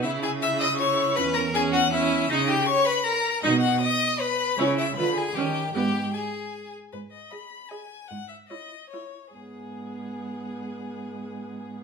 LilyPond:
<<
  \new Staff \with { instrumentName = "Violin" } { \time 3/4 \key gis \minor \tempo 4 = 154 e''8 gis''8 e'''8 dis'''8 cis'''4 | b''8 ais''8 gis''8 fis''8 e''4 | dis''8 g''8 cis'''8 b''8 ais''4 | dis''8 fis''8 dis'''4 b''4 |
cis''8 e''8 b''8 aes''8 g''4 | g''4 gis''4. r8 | b'8 dis''8 b''4 gis''4 | fis''8 e''8 dis''4 cis''4 |
gis'2.~ | gis'2. | }
  \new Staff \with { instrumentName = "Violin" } { \time 3/4 \key gis \minor e'8 gis'8 e''8 dis''8 cis''4 | b'8 ais'8 gis'8 fis'8 e'4 | dis'8 g'8 cis''8 b'8 ais'4 | dis'8 fis'8 dis''4 b'4 |
cis'8 e'8 b'8 aes'8 g'4 | g'4 gis'4. r8 | r4 dis''4 dis''4 | r4 cis''4 cis''4 |
gis'2.~ | gis'2. | }
  \new Staff \with { instrumentName = "Viola" } { \time 3/4 \key gis \minor e'4 e'4 e'4 | cis'4 cis'4 cis'4 | dis'8 r2 r8 | dis'8 r2 r8 |
e'8 r8 f'8 r8 cis'8 r8 | b8 r2 r8 | r4 gis'4 gis'4 | r4 e'4 e'4 |
b2.~ | b2. | }
  \new Staff \with { instrumentName = "Cello" } { \clef bass \time 3/4 \key gis \minor cis2. | e,2. | cis4 r2 | b,4 r2 |
cis4 d4 dis4 | gis,4 r2 | gis,4 r2 | gis,4 r2 |
gis,2.~ | gis,2. | }
>>